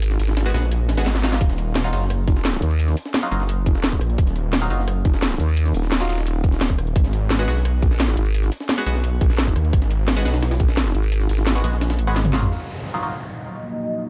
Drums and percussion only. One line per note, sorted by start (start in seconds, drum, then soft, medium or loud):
0.02 closed hi-hat loud
0.02 closed hi-hat medium
0.11 snare soft
0.11 closed hi-hat soft
0.20 closed hi-hat medium
0.20 open hi-hat medium
0.28 snare medium
0.28 closed hi-hat soft
0.37 snare loud
0.37 closed hi-hat loud
0.37 closed hi-hat medium
0.54 snare loud
0.54 closed hi-hat medium
0.63 snare medium
0.72 closed hi-hat medium
0.72 closed hi-hat loud
0.89 snare loud
0.89 closed hi-hat medium
0.97 snare loud
0.97 closed hi-hat medium
1.06 snare loud
1.06 snare medium
1.06 closed hi-hat medium
1.15 snare medium
1.15 closed hi-hat soft
1.24 snare medium
1.24 closed hi-hat medium
1.32 snare medium
1.32 closed hi-hat soft
1.41 kick loud
1.41 closed hi-hat medium
1.50 snare soft
1.50 closed hi-hat soft
1.58 closed hi-hat medium
1.76 snare loud
1.76 closed hi-hat loud
1.76 closed hi-hat medium
1.93 closed hi-hat medium
2.02 snare soft
2.10 cross-stick soft
2.10 closed hi-hat loud
2.10 closed hi-hat medium
2.28 kick loud
2.28 closed hi-hat medium
2.36 snare medium
2.45 snare loud
2.45 closed hi-hat medium
2.54 snare soft
2.62 closed hi-hat medium
2.71 closed hi-hat soft
2.80 closed hi-hat medium
2.88 snare soft
2.88 closed hi-hat soft
2.97 closed hi-hat medium
2.97 open hi-hat medium
3.06 snare medium
3.14 snare loud
3.14 closed hi-hat medium
3.32 closed hi-hat medium
3.40 snare medium
3.49 closed hi-hat medium
3.66 kick loud
3.66 closed hi-hat medium
3.75 snare medium
3.84 snare loud
3.84 closed hi-hat medium
3.92 kick medium
3.92 cross-stick soft
4.01 cross-stick soft
4.01 closed hi-hat medium
4.10 closed hi-hat soft
4.18 kick loud
4.18 closed hi-hat medium
4.27 snare soft
4.27 closed hi-hat soft
4.36 closed hi-hat medium
4.53 snare loud
4.53 closed hi-hat medium
4.70 closed hi-hat medium
4.79 snare soft
4.88 cross-stick soft
4.88 closed hi-hat medium
5.05 kick loud
5.05 closed hi-hat medium
5.14 snare medium
5.22 snare loud
5.22 closed hi-hat medium
5.31 snare soft
5.40 closed hi-hat medium
5.48 closed hi-hat soft
5.57 closed hi-hat medium
5.66 snare soft
5.66 closed hi-hat soft
5.74 closed hi-hat medium
5.74 open hi-hat medium
5.83 snare medium
5.92 snare loud
5.92 closed hi-hat medium
6.09 closed hi-hat medium
6.18 snare medium
6.26 closed hi-hat medium
6.44 kick loud
6.44 closed hi-hat medium
6.52 snare medium
6.61 snare loud
6.61 closed hi-hat medium
6.70 kick medium
6.70 cross-stick soft
6.78 cross-stick soft
6.78 closed hi-hat medium
6.87 closed hi-hat soft
6.96 kick loud
6.96 closed hi-hat medium
7.04 snare soft
7.04 closed hi-hat soft
7.13 closed hi-hat medium
7.30 snare loud
7.30 closed hi-hat medium
7.48 closed hi-hat medium
7.56 snare soft
7.65 cross-stick soft
7.65 closed hi-hat medium
7.82 kick loud
7.82 closed hi-hat medium
7.91 snare medium
8.00 snare loud
8.00 closed hi-hat medium
8.08 snare soft
8.17 closed hi-hat medium
8.26 closed hi-hat soft
8.34 closed hi-hat medium
8.43 snare soft
8.43 closed hi-hat soft
8.52 closed hi-hat medium
8.52 open hi-hat medium
8.60 snare medium
8.69 snare loud
8.69 closed hi-hat medium
8.86 closed hi-hat medium
8.95 snare medium
9.04 closed hi-hat medium
9.21 kick loud
9.21 closed hi-hat medium
9.30 snare soft
9.38 snare loud
9.38 closed hi-hat medium
9.47 kick medium
9.47 cross-stick soft
9.56 cross-stick soft
9.56 closed hi-hat medium
9.65 closed hi-hat soft
9.73 kick loud
9.73 closed hi-hat medium
9.73 closed hi-hat loud
9.82 snare soft
9.82 closed hi-hat soft
9.91 closed hi-hat medium
10.08 snare loud
10.08 closed hi-hat loud
10.08 closed hi-hat medium
10.25 snare loud
10.25 closed hi-hat medium
10.34 snare loud
10.34 closed hi-hat medium
10.43 cross-stick soft
10.43 snare loud
10.43 closed hi-hat medium
10.51 snare loud
10.51 closed hi-hat medium
10.60 kick loud
10.60 closed hi-hat medium
10.69 snare medium
10.77 snare loud
10.77 closed hi-hat medium
10.86 snare soft
10.95 closed hi-hat medium
11.03 closed hi-hat soft
11.12 closed hi-hat medium
11.12 closed hi-hat loud
11.21 snare soft
11.21 closed hi-hat soft
11.29 closed hi-hat medium
11.29 open hi-hat medium
11.38 snare medium
11.38 closed hi-hat soft
11.47 snare loud
11.47 closed hi-hat medium
11.47 closed hi-hat loud
11.64 closed hi-hat medium
11.73 snare medium
11.81 snare loud
11.81 closed hi-hat medium
11.81 closed hi-hat loud
11.90 snare loud
11.90 closed hi-hat medium
11.99 closed hi-hat medium
12.07 cross-stick medium
12.07 closed hi-hat medium
12.16 snare soft
12.16 snare medium
12.16 closed hi-hat medium
12.25 closed hi-hat medium
12.25 closed hi-hat soft
12.25 high tom medium
12.33 snare medium
12.33 closed hi-hat medium
12.42 closed hi-hat soft
12.42 mid tom medium